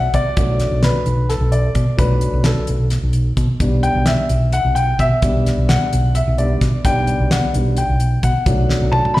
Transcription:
0.00 0.34 F#3 medium
0.00 0.34 A3 soft
0.00 0.34 D4 medium
0.00 0.15 F#5 medium
0.14 0.23 B2 medium
0.14 0.80 D5 loud
0.14 kick medium
0.14 closed hi-hat medium
0.36 0.65 B1 medium
0.36 1.03 F#3 medium
0.36 1.03 A3 medium
0.36 1.04 D4 medium
0.36 kick loud
0.36 closed hi-hat medium
0.60 snare soft
0.60 closed hi-hat medium
0.71 0.90 B1 medium
0.83 1.32 B4 medium
0.83 snare loud
0.83 closed hi-hat medium
1.06 1.34 B1 medium
1.06 closed hi-hat medium
1.29 1.51 A4 medium
1.29 snare soft
1.29 closed hi-hat medium
1.41 1.68 B1 medium
1.52 1.96 D5 medium
1.52 closed hi-hat medium
1.75 1.85 B2 medium
1.75 kick medium
1.75 closed hi-hat medium
1.97 2.26 B1 medium
1.97 2.64 F#3 medium
1.97 2.65 A3 soft
1.97 2.65 D4 medium
1.97 2.47 B4 medium
1.97 kick loud
1.97 closed hi-hat medium
2.21 closed hi-hat medium
2.33 2.52 B1 medium
2.44 2.67 A4 medium
2.44 snare loud
2.44 closed hi-hat medium
2.67 2.96 B1 medium
2.67 closed hi-hat medium
2.90 snare soft
2.90 closed hi-hat medium
3.03 3.31 B1 medium
3.13 closed hi-hat medium
3.37 3.47 B2 medium
3.37 kick medium
3.37 closed hi-hat medium
3.60 3.88 B1 medium
3.60 4.27 G3 medium
3.60 4.27 B3 soft
3.60 4.28 D4 medium
3.60 kick loud
3.60 closed hi-hat medium
3.83 4.08 G5 medium
3.83 closed hi-hat medium
3.95 4.14 B1 medium
4.06 4.55 E5 medium
4.06 snare loud
4.06 closed hi-hat medium
4.29 4.58 B1 medium
4.29 closed hi-hat medium
4.52 4.75 F#5 loud
4.52 closed hi-hat medium
4.65 4.92 B1 medium
4.75 5.00 G5 medium
4.75 closed hi-hat medium
4.99 5.09 B2 medium
4.99 5.71 E5 loud
4.99 kick medium
4.99 closed hi-hat medium
5.22 5.50 B1 medium
5.22 5.89 G3 medium
5.22 5.90 B3 soft
5.22 5.90 D4 medium
5.22 kick loud
5.22 closed hi-hat medium
5.46 snare soft
5.46 closed hi-hat medium
5.58 5.76 B1 medium
5.69 6.17 F#5 medium
5.69 snare loud
5.69 closed hi-hat medium
5.93 6.21 B1 medium
5.93 closed hi-hat medium
6.15 6.37 E5 medium
6.15 closed hi-hat medium
6.28 6.55 B1 medium
6.38 6.60 G3 soft
6.38 6.60 B3 soft
6.38 6.60 D4 medium
6.38 6.82 D5 medium
6.38 closed hi-hat medium
6.61 6.71 B2 loud
6.61 kick medium
6.61 snare soft
6.61 closed hi-hat medium
6.85 7.13 B1 loud
6.85 7.53 G3 medium
6.85 7.54 B3 medium
6.85 7.54 D4 medium
6.85 7.33 G5 loud
6.85 kick loud
6.85 closed hi-hat medium
7.07 closed hi-hat medium
7.20 7.38 B1 loud
7.31 7.53 F#5 medium
7.31 snare loud
7.31 closed hi-hat medium
7.54 7.82 B1 medium
7.54 7.76 G3 soft
7.54 7.76 B3 soft
7.54 7.76 D4 medium
7.54 closed hi-hat medium
7.77 8.21 G5 medium
7.77 closed hi-hat medium
7.90 8.17 B1 medium
8.00 closed hi-hat medium
8.23 8.33 B2 loud
8.23 8.89 F#5 medium
8.23 kick medium
8.23 closed hi-hat medium
8.46 8.74 B1 medium
8.46 9.20 F#3 medium
8.46 9.20 A3 medium
8.46 9.20 D4 medium
8.46 kick loud
8.46 closed hi-hat medium
8.70 snare medium
8.82 9.00 B1 medium
8.92 9.16 A5 medium
8.92 high tom medium
9.05 mid tom medium
9.14 9.20 B1 medium
9.14 9.20 B5 loud
9.14 snare medium

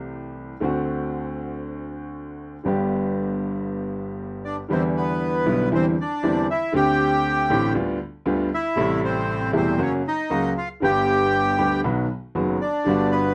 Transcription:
0.00 0.52 C2 medium
0.00 0.52 C3 medium
0.00 0.52 E3 medium
0.00 0.52 A3 medium
0.00 0.53 C4 medium
0.00 0.53 G4 medium
0.60 2.55 D2 medium
0.60 2.55 D3 medium
0.60 2.55 A3 medium
0.60 2.56 C4 medium
0.60 2.57 F#4 medium
2.64 4.60 G1 medium
2.64 4.60 G2 medium
2.64 4.59 D3 medium
2.64 4.59 G3 medium
2.64 4.60 B3 medium
2.68 4.61 G4 medium
4.45 4.57 D4 medium
4.45 4.56 D5 medium
4.69 5.43 E2 medium
4.69 5.42 D3 medium
4.69 5.43 E3 medium
4.69 5.43 G3 medium
4.69 5.43 B3 medium
4.69 4.83 C5 medium
4.73 4.84 C4 medium
4.73 5.44 E4 medium
4.97 5.69 B3 medium
4.97 5.69 B4 medium
5.46 5.68 B1 medium
5.46 5.68 B2 medium
5.46 5.68 D3 medium
5.46 5.68 G3 medium
5.46 5.68 B3 medium
5.46 5.68 E4 medium
5.72 5.94 E2 medium
5.72 5.93 D3 medium
5.72 5.93 E3 medium
5.72 5.93 G3 medium
5.72 5.94 C4 medium
5.72 5.86 C4 medium
5.72 5.93 E4 medium
5.72 5.86 C5 medium
6.01 6.47 D4 medium
6.01 6.47 D5 medium
6.23 6.45 E2 medium
6.23 6.45 D3 medium
6.23 6.45 E3 medium
6.23 6.45 G3 medium
6.23 6.45 C4 medium
6.23 6.45 E4 medium
6.51 6.74 E4 medium
6.51 6.73 E5 medium
6.72 7.47 D2 medium
6.72 7.47 D3 medium
6.72 7.46 A3 medium
6.72 7.47 C4 medium
6.72 7.73 G4 medium
6.72 7.48 G4 medium
6.72 7.73 G5 medium
7.50 7.72 A1 medium
7.50 7.72 A2 medium
7.50 7.72 D3 medium
7.50 7.72 A3 medium
7.50 7.72 C4 medium
7.50 7.72 G4 medium
7.75 7.97 D2 medium
7.75 7.97 D3 medium
7.75 7.97 G3 medium
7.75 7.97 B3 medium
7.75 7.97 F4 medium
8.26 8.48 D2 medium
8.26 8.48 D3 medium
8.26 8.48 G3 medium
8.26 8.48 B3 medium
8.26 8.48 F4 medium
8.54 9.01 E4 medium
8.54 9.01 E5 medium
8.75 9.50 A1 medium
8.75 9.50 A2 medium
8.75 9.49 C3 medium
8.75 9.50 G3 medium
8.75 9.50 A3 medium
8.75 9.51 E4 medium
9.04 9.51 C4 medium
9.04 9.51 C5 medium
9.53 9.75 E1 medium
9.53 9.75 E2 medium
9.53 9.75 C3 medium
9.53 9.75 G3 medium
9.53 9.75 A3 medium
9.53 9.79 C4 medium
9.53 9.75 E4 medium
9.53 9.81 C5 medium
9.78 10.00 F#2 medium
9.78 10.00 C#3 medium
9.78 10.00 F#3 medium
9.78 10.00 A#3 medium
9.78 9.93 C#4 medium
9.78 10.01 F#4 medium
9.82 9.93 C#5 medium
10.07 10.53 D#4 medium
10.07 10.54 D#5 medium
10.30 10.52 C#2 medium
10.30 10.52 C#3 medium
10.30 10.52 F#3 medium
10.30 10.52 A#3 medium
10.30 10.52 F#4 medium
10.57 10.68 F4 medium
10.57 10.69 F5 medium
10.80 11.55 G1 medium
10.80 11.54 G2 medium
10.80 11.53 D3 medium
10.80 11.54 G3 medium
10.80 11.55 B3 medium
10.80 11.80 G4 medium
10.80 11.55 G4 medium
10.80 11.81 G5 medium
11.58 11.80 D2 medium
11.58 11.80 D3 medium
11.58 11.79 G3 medium
11.58 11.80 B3 medium
11.58 11.80 G4 medium
11.84 12.05 B1 medium
11.84 12.05 B2 medium
11.84 12.05 D#3 medium
11.84 12.05 F#3 medium
11.84 12.05 B3 medium
11.84 12.05 F#4 medium
12.35 12.56 F#1 medium
12.35 12.56 F#2 medium
12.35 12.56 D#3 medium
12.35 12.56 F#3 medium
12.35 12.56 B3 medium
12.35 12.56 F#4 medium
12.62 13.09 D4 medium
12.62 13.13 D5 medium
12.84 13.34 G1 medium
12.84 13.34 G2 medium
12.84 13.34 D3 medium
12.84 13.34 G3 medium
12.84 13.34 B3 medium
12.89 13.34 F#4 medium
13.12 13.34 B3 medium
13.12 13.34 B4 medium

